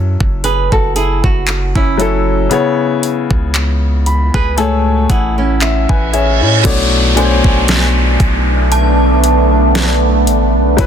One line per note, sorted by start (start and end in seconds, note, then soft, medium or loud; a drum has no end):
0.00 0.16 F#2 loud
0.00 1.97 F#3 medium
0.00 1.99 C#4 medium
0.00 2.00 E4 medium
0.00 2.01 A4 medium
0.20 0.70 F#1 loud
0.20 kick medium
0.44 0.71 G#4 medium
0.44 0.71 B4 medium
0.44 closed hi-hat medium
0.72 1.22 F#1 loud
0.72 0.95 F#4 medium
0.72 0.95 A4 medium
0.72 kick medium
0.96 1.23 E4 medium
0.96 1.22 G#4 medium
0.96 closed hi-hat medium
1.24 1.74 F#1 loud
1.24 1.73 F#4 medium
1.24 kick medium
1.47 clap loud
1.47 closed hi-hat medium
1.76 2.48 F#1 loud
1.76 2.48 C#4 medium
1.76 2.47 E4 medium
1.76 kick medium
1.97 2.39 F#3 medium
1.97 2.39 C#4 medium
1.97 2.40 E4 medium
1.97 2.40 A4 medium
1.97 closed hi-hat medium
2.50 4.07 C#3 medium
2.50 4.08 B3 medium
2.50 4.09 E4 medium
2.50 4.09 C#5 loud
2.50 closed hi-hat medium
3.03 closed hi-hat medium
3.31 4.30 C#2 loud
3.31 kick medium
3.54 clap loud
3.54 closed hi-hat medium
4.06 4.54 B5 medium
4.06 closed hi-hat medium
4.34 5.07 C#2 loud
4.34 4.57 G#4 medium
4.34 4.57 B4 medium
4.34 kick medium
4.56 5.83 A2 medium
4.56 5.83 A3 medium
4.56 5.07 F#4 medium
4.56 5.62 G#4 medium
4.56 5.07 A4 medium
4.56 5.62 C#5 medium
4.56 5.06 G#5 medium
4.56 closed hi-hat medium
4.56 reverse cymbal medium
5.10 5.86 A1 medium
5.10 5.37 E4 medium
5.10 5.36 G#4 medium
5.10 5.58 F#5 medium
5.10 kick medium
5.10 closed hi-hat medium
5.38 6.61 C#4 medium
5.38 6.61 E4 medium
5.61 6.10 E5 medium
5.61 clap loud
5.61 closed hi-hat medium
5.89 6.43 A1 loud
5.89 6.12 B4 medium
5.89 6.12 G#5 medium
5.89 kick medium
6.13 6.40 G#4 medium
6.13 6.40 C#5 medium
6.13 6.40 E5 medium
6.13 closed hi-hat medium
6.41 6.64 A2 medium
6.41 6.91 E4 soft
6.41 6.65 C#5 medium
6.63 7.41 B1 loud
6.63 7.04 B2 medium
6.63 7.05 A3 medium
6.63 10.75 A3 medium
6.63 10.75 B3 medium
6.63 10.75 D4 medium
6.63 7.05 D4 medium
6.63 7.06 C#5 medium
6.63 kick loud
6.63 closed hi-hat medium
6.63 crash loud
6.63 downlifter medium
7.15 8.73 B2 medium
7.15 8.73 A3 medium
7.15 8.74 D4 medium
7.15 7.24 C5 medium
7.15 10.27 G#5 medium
7.15 closed hi-hat medium
7.25 8.78 C#5 medium
7.44 8.17 B1 medium
7.44 kick loud
7.68 snare loud
7.68 closed hi-hat medium
8.20 10.29 B1 loud
8.20 kick medium
8.20 closed hi-hat medium
8.72 10.87 A5 medium
8.72 closed hi-hat medium
9.24 closed hi-hat medium
9.75 snare loud
9.75 closed hi-hat medium
10.27 10.57 A1 loud
10.27 closed hi-hat medium
10.55 10.78 B1 loud
10.77 10.87 F#1 loud
10.77 10.87 F#3 medium
10.77 10.87 C#4 medium
10.77 10.87 E4 medium
10.77 10.87 B4 medium
10.77 10.87 B4 loud
10.77 kick loud
10.77 closed hi-hat medium